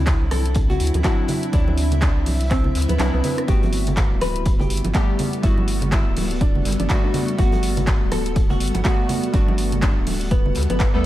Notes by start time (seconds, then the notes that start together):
Already playing: D2 F#3 C4 D4 E4 D5 F#5
0.05 E5, kick, snare, clap, closed hi-hat
0.21 C2
0.31 A4, cross-stick, closed hi-hat, open hi-hat, high conga
0.46 closed hi-hat
0.54 kick, closed hi-hat
0.70 F#4, closed hi-hat, low conga
0.80 D2, closed hi-hat, open hi-hat
0.87 closed hi-hat
0.94 D2, closed hi-hat, high conga
1.04 F#3 C4 D4 E4 F#4, kick, snare, clap, closed hi-hat
1.28 closed hi-hat, open hi-hat, low conga
1.43 closed hi-hat
1.52 D2 F#3 C4 D4 E4, kick, closed hi-hat
1.68 high conga
1.78 closed hi-hat, open hi-hat
1.91 closed hi-hat, low conga
2.01 D4, kick, snare, clap, closed hi-hat
2.16 C2
2.26 open hi-hat, high conga
2.41 closed hi-hat
2.51 C4, kick, clap, closed hi-hat
2.64 low conga
2.75 D2, snare, closed hi-hat, open hi-hat
2.82 closed hi-hat
2.89 D2 B3, closed hi-hat, high conga
2.99 C2 F#3 C4 D4 E4, snare, clap, closed hi-hat
3.14 C2 B3
3.24 snare, closed hi-hat, open hi-hat, low conga
3.38 cross-stick, closed hi-hat
3.47 G1 G3 A3 B3 F#4 G4, kick, closed hi-hat
3.58 G3
3.63 closed hi-hat, high conga
3.73 closed hi-hat, open hi-hat
3.87 closed hi-hat, low conga
3.97 kick, snare, clap, closed hi-hat
4.11 D1
4.21 B4, cross-stick, closed hi-hat, open hi-hat, high conga
4.25 A4 F#5
4.36 closed hi-hat
4.45 kick, closed hi-hat
4.60 G4, closed hi-hat, low conga
4.70 G1, closed hi-hat, open hi-hat
4.77 closed hi-hat
4.84 G1, closed hi-hat, high conga
4.94 G3 A3 B3 G4, kick, snare, clap, closed hi-hat
5.19 closed hi-hat, open hi-hat, low conga
5.33 closed hi-hat
5.42 G1 G3 A3 B3 E4 F#4, kick, closed hi-hat
5.58 high conga
5.68 closed hi-hat, open hi-hat
5.82 closed hi-hat, low conga
5.92 E4, kick, snare, clap, closed hi-hat
6.06 D1
6.16 open hi-hat, high conga
6.31 closed hi-hat
6.41 D4, kick, closed hi-hat
6.55 low conga
6.65 G1, snare, closed hi-hat, open hi-hat
6.73 closed hi-hat
6.80 G1 D4, closed hi-hat, high conga
6.89 G3 A3 B3 F#4, kick, snare, clap, closed hi-hat
7.04 D4
7.14 snare, closed hi-hat, open hi-hat, low conga
7.28 closed hi-hat
7.37 G1 G3 A3 B3 F#4, kick, closed hi-hat
7.52 closed hi-hat, high conga
7.63 closed hi-hat, open hi-hat
7.77 closed hi-hat, low conga
7.87 kick, snare, clap, closed hi-hat
8.02 D1
8.12 A4, cross-stick, closed hi-hat, open hi-hat, high conga
8.26 closed hi-hat
8.36 kick, closed hi-hat
8.50 F#4, closed hi-hat, low conga
8.60 G1, closed hi-hat, open hi-hat
8.68 closed hi-hat
8.74 G1, closed hi-hat, high conga
8.84 G3 A3 B3 F#4, kick, snare, clap, closed hi-hat
9.09 closed hi-hat, open hi-hat, low conga
9.24 closed hi-hat
9.33 G1 G3 A3 B3 D4 F#4, kick, closed hi-hat
9.48 high conga
9.58 closed hi-hat, open hi-hat
9.72 closed hi-hat, low conga
9.82 D4, kick, snare, clap, closed hi-hat
9.97 D1
10.07 open hi-hat, high conga
10.21 closed hi-hat
10.31 B3, kick, closed hi-hat
10.46 low conga
10.55 D2, snare, closed hi-hat, open hi-hat
10.63 closed hi-hat
10.70 G1 B3, closed hi-hat, high conga
10.80 kick, snare, clap, closed hi-hat
10.94 D2 G3 A3 B3 A4